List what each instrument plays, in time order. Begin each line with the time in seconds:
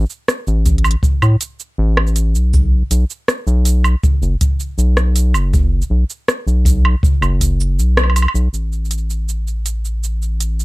0.06 shaker
0.10 shaker
0.28 cross-stick, shaker
0.47 analog synth bass A1, shaker
0.66 kick, closed hi-hat, shaker
0.78 closed hi-hat
0.84 low woodblock, shaker
0.91 closed hi-hat
1.03 kick, shaker
1.22 analog synth bass A2, low woodblock, shaker
1.41 closed hi-hat, shaker
1.60 shaker
1.78 analog synth bass A1
1.97 cross-stick, low woodblock
2.07 shaker
2.16 closed hi-hat, shaker
2.34 analog synth bass B1, shaker
2.54 kick, shaker
2.91 analog synth bass B1, closed hi-hat, shaker
3.10 shaker
3.28 cross-stick, shaker
3.47 analog synth bass B1, shaker
3.65 closed hi-hat, shaker
3.84 low woodblock, shaker
4.03 kick, shaker
4.22 analog synth bass F#1, shaker
4.41 kick, closed hi-hat, shaker
4.60 shaker
4.78 analog synth bass B1, shaker
4.97 cross-stick, shaker
5.16 closed hi-hat, shaker
5.34 analog synth bass F#1, low woodblock, shaker
5.54 kick, shaker
5.82 shaker
5.90 analog synth bass B1
6.10 shaker
6.28 cross-stick, shaker
6.47 analog synth bass B1, shaker
6.65 kick, closed hi-hat, shaker
6.85 low woodblock
7.03 kick, shaker
7.22 analog synth bass F#1, low woodblock, shaker
7.41 kick, closed hi-hat, shaker
7.60 shaker
7.78 analog synth bass B1, shaker
7.97 cross-stick, low woodblock, shaker
8.04 low woodblock
8.10 low woodblock
8.16 closed hi-hat, low woodblock, shaker
8.22 low woodblock
8.28 low woodblock
8.34 analog synth bass B1, shaker
8.53 analog synth bass A1, shaker
8.73 shaker
8.85 shaker
8.91 closed hi-hat, shaker
9.10 shaker
9.29 shaker
9.47 shaker
9.66 closed hi-hat, shaker
9.85 shaker
10.04 shaker
10.22 shaker
10.40 closed hi-hat, shaker
10.60 shaker